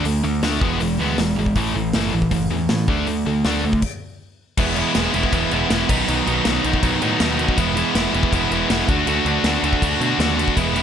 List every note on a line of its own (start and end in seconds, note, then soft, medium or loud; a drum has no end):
0.05 0.22 D2 medium
0.05 0.22 D3 medium
0.05 0.23 A3 medium
0.05 open hi-hat medium
0.24 0.40 D2 medium
0.24 0.41 D3 medium
0.24 0.41 A3 medium
0.43 0.59 D2 medium
0.43 0.61 D3 medium
0.43 0.61 A3 medium
0.43 0.62 D4 medium
0.43 snare loud
0.43 open hi-hat medium
0.61 0.78 E1 medium
0.61 0.80 E3 medium
0.61 0.80 G#3 medium
0.61 0.80 B3 medium
0.61 kick loud
0.80 0.97 E1 medium
0.80 0.98 E3 medium
0.80 0.98 G#3 medium
0.80 open hi-hat medium
0.99 1.16 D2 medium
0.99 1.17 E3 medium
0.99 1.18 G#3 medium
0.99 1.18 B3 loud
1.18 1.35 E1 medium
1.18 1.36 E3 medium
1.18 1.36 G#3 medium
1.18 snare loud
1.18 open hi-hat medium
1.37 1.54 G#1 medium
1.37 1.55 E3 medium
1.37 1.55 G#3 medium
1.46 kick medium
1.55 1.72 A1 medium
1.55 1.74 A2 medium
1.55 1.74 E3 medium
1.55 1.75 A3 medium
1.55 kick medium
1.55 open hi-hat medium
1.75 1.91 A1 medium
1.75 1.93 A2 medium
1.75 1.93 E3 medium
1.93 2.10 F#1 medium
1.93 2.12 A2 medium
1.93 2.13 E3 medium
1.93 2.13 A3 medium
1.93 snare loud
1.93 open hi-hat medium
2.13 2.29 A1 medium
2.13 2.30 A2 medium
2.13 2.30 E3 medium
2.22 kick medium
2.31 2.48 F#1 medium
2.31 2.49 A2 medium
2.31 2.49 E3 medium
2.31 kick medium
2.31 open hi-hat medium
2.50 2.67 E2 medium
2.50 2.68 A2 medium
2.50 2.68 E3 medium
2.69 2.86 A2 medium
2.69 2.86 E3 medium
2.69 snare loud
2.69 open hi-hat medium
2.88 3.04 D2 medium
2.88 3.06 D3 medium
2.88 3.06 A3 medium
2.88 3.07 D4 loud
2.88 kick loud
3.07 3.23 D2 medium
3.07 3.24 D3 medium
3.07 3.25 A3 medium
3.07 open hi-hat soft
3.26 3.42 D2 medium
3.26 3.43 D3 medium
3.26 3.43 A3 medium
3.45 3.61 D2 medium
3.45 3.63 D3 medium
3.45 3.63 A3 medium
3.45 3.63 D4 loud
3.45 snare loud
3.45 open hi-hat medium
3.64 3.80 D2 loud
3.64 3.81 D3 medium
3.64 3.81 A3 medium
3.73 kick medium
3.82 kick loud
3.82 crash loud
4.57 4.82 E1 medium
4.57 4.75 E3 loud
4.57 4.76 G#3 medium
4.57 4.77 B3 medium
4.57 4.77 E4 loud
4.57 kick loud
4.57 crash loud
4.57 crash medium
4.76 4.94 E3 loud
4.76 4.95 G#3 loud
4.76 4.96 B3 loud
4.76 4.96 E4 loud
4.76 crash medium
4.95 5.08 E1 medium
4.95 5.13 E3 medium
4.95 5.14 G#3 medium
4.95 5.15 B3 medium
4.95 5.15 E4 medium
4.95 snare loud
4.95 crash medium
5.14 5.26 E1 loud
5.14 5.32 E3 medium
5.14 5.33 G#3 medium
5.14 5.34 B3 medium
5.14 5.34 E4 loud
5.14 crash medium
5.23 kick medium
5.33 5.45 E1 loud
5.33 5.51 E3 medium
5.33 5.52 G#3 medium
5.33 5.53 B3 loud
5.33 5.53 E4 medium
5.33 kick loud
5.33 crash medium
5.51 5.64 E1 medium
5.51 5.69 E3 medium
5.51 5.70 G#3 medium
5.51 5.71 B3 medium
5.51 5.71 E4 medium
5.51 crash medium
5.70 5.82 E1 loud
5.70 5.88 E3 loud
5.70 5.89 G#3 loud
5.70 5.91 B3 loud
5.70 5.89 E4 loud
5.70 snare loud
5.70 crash medium
5.89 6.01 B1 medium
5.89 6.06 B2 medium
5.89 6.07 D#3 loud
5.89 6.08 F#3 loud
5.89 6.09 B3 loud
5.89 6.09 D#4 loud
5.89 kick loud
5.89 crash loud
6.08 6.20 B1 loud
6.08 6.24 B2 medium
6.08 6.25 D#3 medium
6.08 6.26 F#3 loud
6.08 6.27 B3 loud
6.08 6.27 D#4 loud
6.08 crash medium
6.25 6.39 B1 medium
6.25 6.44 B2 medium
6.25 6.44 D#3 loud
6.25 6.45 F#3 loud
6.25 6.46 B3 loud
6.25 6.46 D#4 loud
6.25 crash medium
6.45 6.58 B1 medium
6.45 6.62 B2 medium
6.45 6.63 D#3 medium
6.45 6.63 F#3 medium
6.45 6.64 B3 medium
6.45 6.65 D#4 medium
6.45 snare loud
6.45 crash medium
6.63 6.76 B1 medium
6.63 6.80 B2 medium
6.63 6.81 D#3 medium
6.63 6.82 F#3 loud
6.63 6.82 B3 medium
6.63 6.82 D#4 loud
6.63 crash medium
6.74 kick medium
6.82 6.95 B1 loud
6.82 7.00 B2 medium
6.82 7.01 D#3 medium
6.82 7.01 F#3 medium
6.82 7.01 B3 medium
6.82 7.03 D#4 loud
6.82 kick loud
6.82 crash medium
7.01 7.14 A2 medium
7.01 7.18 B2 medium
7.01 7.19 D#3 medium
7.01 7.19 F#3 medium
7.01 7.20 B3 medium
7.01 7.21 D#4 medium
7.01 crash medium
7.19 7.44 D#2 medium
7.19 7.37 B2 loud
7.19 7.38 D#3 loud
7.19 7.38 F#3 loud
7.19 7.39 B3 loud
7.19 7.40 D#4 loud
7.19 snare loud
7.19 crash medium
7.38 7.56 B2 loud
7.38 7.57 D#3 medium
7.38 7.57 F#3 loud
7.38 7.57 B3 loud
7.38 7.58 D#4 loud
7.38 crash medium
7.49 kick medium
7.58 7.82 E1 loud
7.58 7.76 E3 medium
7.58 7.76 G#3 loud
7.58 7.77 B3 loud
7.58 7.77 E4 loud
7.58 kick loud
7.58 crash medium
7.77 7.94 E3 medium
7.77 7.95 G#3 medium
7.77 7.95 B3 medium
7.77 7.96 E4 loud
7.77 crash medium
7.95 8.07 E1 medium
7.95 8.13 E3 medium
7.95 8.14 G#3 medium
7.95 8.14 B3 medium
7.95 8.15 E4 medium
7.95 snare loud
7.95 crash medium
8.13 8.26 E1 loud
8.13 8.32 E3 medium
8.13 8.32 G#3 medium
8.13 8.33 B3 loud
8.13 8.34 E4 loud
8.13 crash medium
8.23 kick medium
8.32 8.44 E1 loud
8.32 8.50 E3 medium
8.32 8.51 G#3 medium
8.32 8.52 B3 medium
8.32 8.52 E4 loud
8.32 kick loud
8.32 crash medium
8.51 8.63 E1 medium
8.51 8.68 E3 medium
8.51 8.68 G#3 medium
8.51 8.69 B3 medium
8.51 8.70 E4 medium
8.51 crash medium
8.69 8.82 E1 loud
8.69 8.87 E3 loud
8.69 8.87 G#3 loud
8.69 8.88 B3 loud
8.69 8.88 E4 loud
8.69 snare loud
8.69 crash medium
8.88 9.01 D2 loud
8.88 9.06 D3 medium
8.88 9.07 A3 medium
8.88 9.07 D4 loud
8.88 9.08 F#4 loud
8.88 kick loud
8.88 crash medium
9.06 9.19 D2 medium
9.06 9.25 D3 medium
9.06 9.25 A3 medium
9.06 9.26 D4 medium
9.06 9.26 F#4 loud
9.06 crash medium
9.25 9.37 D2 medium
9.25 9.43 D3 medium
9.25 9.44 A3 loud
9.25 9.45 D4 loud
9.25 9.45 F#4 loud
9.25 crash medium
9.44 9.56 D2 medium
9.44 9.62 D3 medium
9.44 9.63 A3 medium
9.44 9.64 D4 medium
9.44 9.64 F#4 medium
9.44 snare loud
9.44 crash medium
9.63 9.75 D2 loud
9.63 9.80 D3 medium
9.63 9.81 A3 medium
9.63 9.82 D4 medium
9.63 9.83 F#4 medium
9.63 crash medium
9.73 kick medium
9.82 9.94 D2 loud
9.82 9.99 D3 medium
9.82 10.00 A3 medium
9.82 10.01 D4 medium
9.82 10.01 F#4 loud
9.82 kick loud
9.82 crash medium
10.00 10.12 B2 medium
10.00 10.18 D3 medium
10.00 10.19 A3 medium
10.00 10.20 D4 medium
10.00 10.20 F#4 medium
10.00 crash medium
10.19 10.43 D#2 loud
10.19 10.36 D3 medium
10.19 10.37 A3 loud
10.19 10.37 D4 loud
10.19 10.38 F#4 loud
10.19 snare loud
10.19 crash medium
10.37 10.55 D3 medium
10.37 10.56 A3 medium
10.37 10.56 D4 medium
10.37 10.56 F#4 loud
10.37 crash medium
10.48 kick medium
10.56 10.81 E1 medium
10.56 10.74 E3 medium
10.56 10.75 G#3 medium
10.56 10.77 B3 loud
10.56 10.76 E4 loud
10.56 kick loud
10.56 crash medium
10.75 10.83 E3 medium
10.75 10.83 G#3 loud
10.75 10.83 B3 loud
10.75 10.83 E4 loud
10.75 crash medium